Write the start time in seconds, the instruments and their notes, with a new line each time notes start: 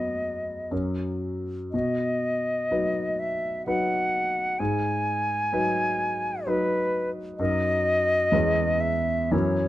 Already playing: grand piano F#2 F#3 B3 B4, flute D#5
0.71 grand piano F#2 F#3 C#4 A#4
1.72 grand piano B2, flute D#5
2.71 grand piano F#3 D#4 B4
3.19 flute E5
3.67 grand piano F#3 D#4 B4, flute F#5
4.59 grand piano G#2, flute G#5
5.52 grand piano F#3 D#4 B4
6.47 grand piano F#3 D#4 B4, flute B4
7.38 grand piano F#2 F#3 D#4 A#4, flute D#5
8.32 grand piano E2 G#3 C#4 B4
8.80 flute E5
9.31 grand piano F#2 E3 C#4 A#4, flute C#5